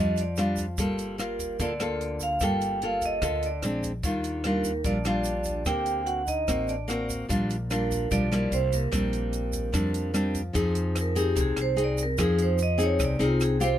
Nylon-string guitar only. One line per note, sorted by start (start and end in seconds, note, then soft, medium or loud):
0.00 0.76 F3 soft
0.00 0.23 G3 soft
0.00 0.23 D4 soft
0.00 0.23 F4 soft
0.38 0.65 G3 soft
0.38 0.65 D4 medium
0.38 0.65 F4 medium
0.79 1.58 G3 medium
0.79 1.16 A#3 medium
0.79 1.16 F4 medium
0.79 1.16 A4 medium
1.18 1.56 A#3 medium
1.18 1.56 F4 medium
1.60 2.39 D3 medium
1.60 1.71 A#3 medium
1.60 1.72 F4 soft
1.60 1.72 A4 medium
1.80 2.38 A#3 medium
1.80 2.38 F4 medium
1.80 2.38 A4 medium
2.42 3.21 G3 medium
2.42 2.79 A#3 medium
2.42 2.79 F4 soft
2.42 2.79 A4 medium
2.83 3.19 A#3 soft
2.83 3.20 F4 medium
2.83 3.20 A4 medium
3.22 3.61 D3 soft
3.22 3.48 A#3 soft
3.22 3.49 F4 medium
3.22 3.49 A4 medium
3.64 3.91 G#3 medium
3.64 3.91 C4 medium
3.64 3.91 D4 medium
4.04 4.83 D#3 soft
4.04 4.41 G3 soft
4.04 4.42 D4 soft
4.04 4.42 F4 medium
4.45 4.71 G3 soft
4.45 4.71 D4 medium
4.45 4.72 F4 medium
4.84 5.64 A#2 soft
4.84 4.97 G3 soft
4.84 4.97 D4 soft
4.84 4.98 F4 medium
5.05 5.63 G3 medium
5.05 5.64 D4 medium
5.05 5.64 F4 medium
5.66 6.46 D3 medium
5.66 6.21 A#3 soft
5.66 6.21 C4 soft
6.48 6.74 A#3 soft
6.48 6.74 C4 medium
6.48 6.75 F#4 medium
6.88 7.26 A#3 medium
6.88 7.26 C4 soft
6.88 7.26 F#4 medium
7.29 8.09 A#2 medium
7.29 7.56 G3 medium
7.29 7.55 D4 medium
7.29 7.56 F4 medium
7.70 8.08 G3 soft
7.70 8.08 D4 medium
7.70 8.08 F4 medium
8.11 8.50 F3 soft
8.11 8.28 G3 soft
8.11 8.28 D4 soft
8.11 8.29 F4 medium
8.32 8.89 G3 medium
8.32 8.90 A#3 medium
8.32 8.90 E4 medium
8.91 9.72 A#2 medium
8.91 9.70 G3 medium
8.91 9.70 C4 medium
8.91 9.71 D4 medium
9.72 10.52 F3 soft
9.72 10.11 G3 soft
9.72 10.11 C4 medium
9.72 10.11 D4 medium
10.14 10.41 G3 medium
10.14 10.41 C4 soft
10.14 10.41 D4 medium
10.53 11.34 F3 medium
10.53 11.12 C4 medium
10.53 11.13 D#4 medium
10.53 11.13 G#4 medium
11.15 11.74 C4 medium
11.15 11.74 D#4 medium
11.15 11.74 G#4 medium
11.35 12.16 C3 medium
11.76 12.03 C4 medium
11.76 12.04 D#4 medium
11.76 12.04 G#4 medium
12.18 12.98 F3 medium
12.18 12.59 C4 medium
12.18 12.59 D#4 medium
12.18 12.59 G#4 medium
12.78 13.16 C4 medium
12.78 13.17 D#4 medium
12.78 13.17 G#4 medium
12.99 13.79 C3 soft
13.19 13.57 C4 medium
13.19 13.57 D#4 medium
13.19 13.58 G#4 medium
13.60 13.79 C4 medium
13.60 13.79 F4 medium
13.60 13.79 G4 medium